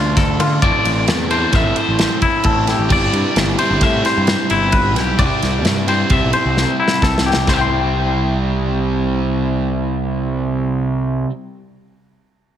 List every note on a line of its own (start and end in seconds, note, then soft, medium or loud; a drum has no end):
0.00 0.40 D2 medium
0.00 0.63 D3 medium
0.00 0.62 A3 medium
0.00 0.62 D4 medium
0.00 0.17 F4 medium
0.00 0.61 F4 medium
0.00 0.61 A4 medium
0.17 0.39 A4 medium
0.17 kick loud
0.17 snare soft
0.17 ride loud
0.40 0.58 D3 loud
0.40 0.62 F4 medium
0.40 ride medium
0.62 0.71 A1 loud
0.62 1.29 A3 loud
0.62 1.32 C4 loud
0.62 1.31 E4 loud
0.62 1.29 A4 loud
0.62 1.08 D5 loud
0.62 kick loud
0.62 ride loud
0.85 1.09 A1 medium
0.85 ride medium
1.08 1.44 E2 loud
1.08 snare loud
1.08 ride loud
1.30 2.89 A3 medium
1.30 2.89 C4 medium
1.30 2.91 E4 medium
1.30 2.89 A4 loud
1.30 1.55 C5 medium
1.30 ride medium
1.52 1.62 A1 loud
1.52 1.77 E5 medium
1.52 kick loud
1.52 snare soft
1.52 ride loud
1.64 1.73 G1 medium
1.76 2.22 C5 medium
1.76 ride medium
1.88 2.06 A1 medium
1.99 snare loud
1.99 ride loud
2.22 2.45 E4 medium
2.22 kick medium
2.22 ride medium
2.44 2.72 A1 loud
2.44 2.68 A4 medium
2.44 kick loud
2.44 ride loud
2.67 2.91 G4 medium
2.67 snare soft
2.67 ride medium
2.78 2.88 A1 medium
2.89 3.08 G1 loud
2.89 3.61 G3 loud
2.89 3.60 C4 loud
2.89 3.59 E4 loud
2.89 3.58 G4 loud
2.89 3.37 D5 loud
2.89 kick loud
2.89 crash loud
3.13 3.22 G2 loud
3.13 ride medium
3.36 3.54 G1 medium
3.36 snare loud
3.36 ride loud
3.58 5.18 G3 medium
3.58 5.19 C4 medium
3.58 5.20 E4 medium
3.58 5.21 G4 medium
3.58 3.83 C5 medium
3.58 ride medium
3.70 3.79 G1 medium
3.81 4.00 A2 loud
3.81 4.05 E5 medium
3.81 kick loud
3.81 snare soft
3.81 ride loud
4.05 4.50 C5 medium
4.05 snare soft
4.05 ride medium
4.17 4.35 G2 medium
4.27 snare loud
4.27 ride medium
4.50 4.96 G1 medium
4.50 4.74 E4 medium
4.50 ride medium
4.72 4.95 B4 medium
4.72 kick loud
4.72 ride loud
4.95 5.14 B1 loud
4.95 5.19 G4 medium
4.95 snare soft
4.95 ride medium
5.18 5.28 C2 loud
5.18 5.87 C3 medium
5.18 5.87 G3 medium
5.18 5.87 C4 loud
5.18 5.87 E4 loud
5.18 5.86 G4 medium
5.18 5.65 D5 loud
5.18 kick loud
5.18 ride loud
5.42 5.66 C2 loud
5.42 snare soft
5.42 ride medium
5.65 6.02 G2 loud
5.65 snare loud
5.65 ride loud
5.87 7.46 C3 medium
5.87 7.47 G3 medium
5.87 7.48 C4 medium
5.87 7.48 E4 medium
5.87 7.47 G4 medium
5.87 6.11 C5 medium
5.87 ride medium
6.09 6.19 C2 loud
6.09 6.33 E5 medium
6.09 kick loud
6.09 ride loud
6.24 6.33 B1 medium
6.33 6.79 C5 medium
6.33 ride medium
6.45 6.64 C2 medium
6.57 snare medium
6.80 7.03 E4 medium
6.88 snare medium
7.02 7.30 C2 medium
7.02 7.26 A4 medium
7.02 kick loud
7.02 snare medium
7.18 snare loud
7.26 7.49 G4 medium
7.33 7.45 C2 medium
7.33 snare medium
7.47 11.24 C2 loud
7.47 11.29 C3 loud
7.47 11.30 G3 loud
7.47 11.30 C4 loud
7.47 7.54 C5 medium
7.47 kick loud
7.47 snare loud
7.51 11.31 E4 loud
7.51 7.61 E5 medium
7.57 11.30 G5 medium
7.61 11.32 C6 medium